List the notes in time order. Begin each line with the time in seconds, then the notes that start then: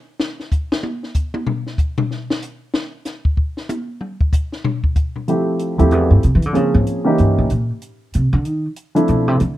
0.20 snare
0.40 snare
0.51 kick, hi-hat pedal
0.72 snare
0.83 high tom
1.03 snare
1.14 kick, hi-hat pedal
1.34 high tom
1.47 floor tom
1.67 snare
1.78 kick, hi-hat pedal
1.98 floor tom
2.11 snare
2.30 snare
2.42 hi-hat pedal
2.74 snare
3.05 snare, hi-hat pedal
3.25 kick
3.37 kick
3.57 snare
3.69 hi-hat pedal, high tom
4.01 mid tom
4.21 kick
4.33 kick, hi-hat pedal
4.52 snare
4.64 floor tom
4.84 kick
4.95 kick, hi-hat pedal
5.16 floor tom
5.28 F3 A3 C4 E4 G4, closed hi-hat
5.59 closed hi-hat
5.78 D#2 F3 A3 C4 E4 G4, closed hi-hat
5.91 E2, closed hi-hat
6.11 G2
6.23 C3, closed hi-hat
6.35 E3
6.42 D3, closed hi-hat
6.53 C#3 F3 A#3 C4 C#4 G#4, closed hi-hat
6.74 G#2
6.87 closed hi-hat
7.05 E3 A#3 C#4 D#4 G4
7.18 G2, closed hi-hat
7.38 A2
7.50 A#2, closed hi-hat
7.82 closed hi-hat
8.13 C3, closed hi-hat
8.33 D3
8.45 D#3, closed hi-hat
8.76 closed hi-hat
8.95 F3 A3 C4 D4 E4, closed hi-hat
9.08 B2, closed hi-hat
9.28 C3
9.40 D3, closed hi-hat